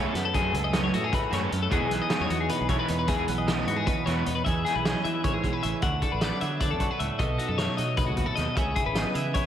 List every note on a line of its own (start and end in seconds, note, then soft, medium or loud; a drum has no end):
0.00 0.32 F#2 medium
0.00 0.33 C#3 medium
0.00 0.13 F#3 medium
0.00 1.37 F#3 medium
0.00 0.13 A3 medium
0.00 0.54 A3 soft
0.00 0.15 B3 medium
0.00 0.14 C#4 medium
0.00 1.74 E4 medium
0.00 0.14 F#4 medium
0.07 0.24 A4 medium
0.14 0.50 F#2 medium
0.14 0.75 B3 medium
0.14 muted overdriven electric guitar stroke soft
0.14 snare soft
0.14 closed hi-hat medium
0.25 0.35 A4 medium
0.34 1.13 F#2 medium
0.34 0.54 F#3 medium
0.34 0.53 A3 medium
0.34 0.53 C#4 medium
0.34 0.52 F#4 medium
0.34 0.54 G#4 medium
0.34 kick medium
0.34 closed hi-hat medium
0.53 0.89 C#2 medium
0.53 0.94 A3 medium
0.53 muted overdriven electric guitar stroke soft
0.53 closed hi-hat medium
0.64 0.83 D#5 medium
0.72 0.92 F#3 medium
0.72 0.92 A3 medium
0.72 1.73 B3 medium
0.72 0.92 C#4 medium
0.72 0.91 F#4 medium
0.72 snare medium
0.72 closed hi-hat medium
0.84 0.93 C#5 medium
0.93 1.11 A2 medium
0.93 1.72 A3 medium
0.93 1.04 F#4 medium
0.93 muted overdriven electric guitar stroke soft
0.93 closed hi-hat soft
1.04 1.13 G#4 medium
1.12 1.33 A2 medium
1.12 1.33 B4 medium
1.12 muted overdriven electric guitar stroke soft
1.12 kick medium
1.12 snare soft
1.12 closed hi-hat medium
1.31 1.50 F#2 medium
1.31 1.53 G#2 medium
1.31 1.49 F#3 medium
1.31 1.50 A3 medium
1.31 1.50 C#4 medium
1.31 1.51 F#4 medium
1.31 1.43 C#5 medium
1.31 snare soft
1.31 closed hi-hat soft
1.43 1.61 A4 medium
1.51 1.70 F#2 medium
1.51 1.71 F#2 medium
1.51 muted overdriven electric guitar stroke soft
1.51 closed hi-hat medium
1.63 1.72 A4 medium
1.69 1.80 E2 medium
1.69 3.08 E2 medium
1.69 1.90 E3 medium
1.69 4.46 E3 medium
1.69 1.89 G#3 medium
1.69 1.88 B3 medium
1.69 1.92 B3 medium
1.69 1.88 E4 medium
1.69 1.91 G#4 medium
1.69 kick medium
1.69 closed hi-hat medium
1.74 2.11 D#4 medium
1.74 4.46 G#4 medium
1.82 1.99 B1 medium
1.89 2.30 B3 medium
1.89 muted overdriven electric guitar stroke soft
1.89 snare soft
1.89 closed hi-hat medium
2.02 2.21 D#5 medium
2.09 2.29 E3 medium
2.09 2.28 G#3 medium
2.09 2.28 B3 medium
2.09 2.89 D#4 medium
2.09 2.28 E4 medium
2.09 snare loud
2.09 closed hi-hat medium
2.20 2.29 E2 medium
2.20 2.31 C#5 medium
2.29 2.48 E2 medium
2.29 2.68 B3 medium
2.29 2.40 F#4 medium
2.29 muted overdriven electric guitar stroke medium
2.29 closed hi-hat medium
2.40 2.50 G#4 medium
2.49 3.08 B2 medium
2.49 2.69 B4 medium
2.49 muted overdriven electric guitar stroke soft
2.49 closed hi-hat medium
2.60 2.78 B1 medium
2.68 2.87 E3 medium
2.68 2.88 G#3 medium
2.68 2.79 A3 medium
2.68 2.88 B3 medium
2.68 2.88 E4 medium
2.68 2.79 C#5 medium
2.68 kick medium
2.68 closed hi-hat medium
2.79 3.08 B3 soft
2.79 2.98 B4 medium
2.88 3.24 E2 medium
2.88 3.06 D#4 medium
2.88 muted overdriven electric guitar stroke soft
2.88 closed hi-hat medium
2.99 3.08 B4 medium
3.07 4.45 E2 medium
3.07 3.27 E3 medium
3.07 3.27 G#3 medium
3.07 3.27 B3 medium
3.07 3.26 E4 medium
3.07 3.28 G#4 medium
3.07 kick medium
3.07 closed hi-hat medium
3.27 3.64 B1 medium
3.27 3.68 B3 soft
3.27 muted overdriven electric guitar stroke soft
3.27 closed hi-hat medium
3.38 3.57 D#5 medium
3.47 3.67 E3 medium
3.47 3.67 G#3 medium
3.47 3.67 B3 medium
3.47 4.26 D#4 medium
3.47 3.66 E4 medium
3.47 snare loud
3.47 closed hi-hat medium
3.57 3.67 C#5 medium
3.67 3.85 G#2 medium
3.67 4.07 B3 medium
3.67 3.77 F#4 medium
3.67 muted overdriven electric guitar stroke soft
3.67 closed hi-hat soft
3.77 3.86 G#4 medium
3.86 4.46 B2 soft
3.86 4.06 B4 medium
3.86 muted overdriven electric guitar stroke soft
3.86 kick medium
3.86 closed hi-hat medium
4.06 4.24 E2 medium
4.06 4.25 E3 medium
4.06 4.25 G#3 medium
4.06 4.25 B3 medium
4.06 4.44 B3 medium
4.06 4.25 E4 medium
4.06 4.16 C#5 medium
4.06 snare soft
4.06 closed hi-hat soft
4.16 4.34 B4 medium
4.26 4.44 E2 medium
4.26 4.44 D#4 medium
4.26 muted overdriven electric guitar stroke soft
4.26 closed hi-hat medium
4.35 4.44 B4 medium
4.45 5.24 E2 medium
4.45 4.64 E2 medium
4.45 5.81 G#4 medium
4.45 4.65 E5 medium
4.45 kick medium
4.45 closed hi-hat medium
4.65 5.81 E4 soft
4.65 4.75 G#4 medium
4.65 snare soft
4.65 closed hi-hat medium
4.75 4.93 B1 medium
4.75 4.85 B4 medium
4.85 5.81 C#4 medium
4.85 5.04 D#5 medium
4.85 snare medium
4.85 closed hi-hat medium
5.04 5.83 E3 medium
5.04 5.35 E3 medium
5.04 5.24 E5 medium
5.04 closed hi-hat soft
5.24 5.44 A2 medium
5.24 5.34 C#5 medium
5.24 kick medium
5.24 closed hi-hat medium
5.33 5.52 G#2 medium
5.33 5.53 G#4 medium
5.43 5.63 B2 soft
5.43 kick medium
5.43 closed hi-hat soft
5.53 5.63 B4 medium
5.63 5.73 A1 medium
5.63 5.83 C#3 medium
5.63 5.82 E5 medium
5.63 closed hi-hat medium
5.82 6.00 D2 medium
5.82 7.18 D3 medium
5.82 6.80 F#4 medium
5.82 6.02 F#5 medium
5.82 kick medium
5.82 closed hi-hat medium
6.02 6.60 D4 soft
6.02 6.12 A4 medium
6.02 kick medium
6.02 closed hi-hat soft
6.12 6.30 A1 medium
6.12 6.22 B4 medium
6.21 7.23 B3 soft
6.21 6.41 D5 medium
6.21 snare medium
6.21 closed hi-hat medium
6.41 6.73 D3 medium
6.41 7.18 F#3 medium
6.41 6.60 E5 medium
6.41 closed hi-hat soft
6.60 7.18 D4 medium
6.60 6.71 D5 medium
6.60 kick medium
6.60 closed hi-hat medium
6.71 6.89 F#2 medium
6.71 6.91 A4 medium
6.80 7.18 F#4 soft
6.80 kick medium
6.80 closed hi-hat soft
6.91 7.01 B4 medium
7.00 7.09 C#2 medium
7.00 7.18 A2 medium
7.00 7.18 E5 medium
7.00 closed hi-hat medium
7.19 7.37 B1 medium
7.19 8.36 B2 medium
7.19 8.55 A4 medium
7.19 7.39 D#5 medium
7.19 kick medium
7.19 closed hi-hat medium
7.38 8.55 D#4 soft
7.38 7.49 F#4 medium
7.38 closed hi-hat soft
7.48 7.67 F#2 medium
7.48 7.59 A4 medium
7.58 8.57 A3 medium
7.58 7.77 C#5 medium
7.58 snare medium
7.58 closed hi-hat medium
7.77 8.09 B2 medium
7.77 8.55 F#3 medium
7.77 7.97 D#5 medium
7.77 closed hi-hat soft
7.97 8.18 G#2 soft
7.97 8.08 B4 medium
7.97 kick medium
7.97 closed hi-hat medium
8.06 8.26 D#2 medium
8.06 8.26 F#4 medium
8.17 8.38 A2 soft
8.17 kick medium
8.17 closed hi-hat soft
8.26 8.37 A4 medium
8.36 8.46 D#2 medium
8.36 8.57 B2 medium
8.36 8.56 D#5 medium
8.36 snare soft
8.36 closed hi-hat soft
8.56 8.75 C#2 medium
8.56 9.16 C#3 medium
8.56 9.46 G#4 medium
8.56 8.76 E5 medium
8.56 kick medium
8.56 closed hi-hat medium
8.76 9.34 E4 soft
8.76 8.86 G#4 medium
8.76 kick medium
8.76 closed hi-hat medium
8.86 9.04 G#1 medium
8.86 8.96 B4 medium
8.95 9.46 B3 medium
8.95 9.15 D#5 medium
8.95 snare medium
8.95 closed hi-hat medium
9.15 9.46 C#3 medium
9.15 9.46 E3 medium
9.15 9.34 E5 medium
9.15 closed hi-hat medium
9.34 9.46 E4 soft
9.34 9.45 C#5 medium
9.34 kick medium
9.34 closed hi-hat medium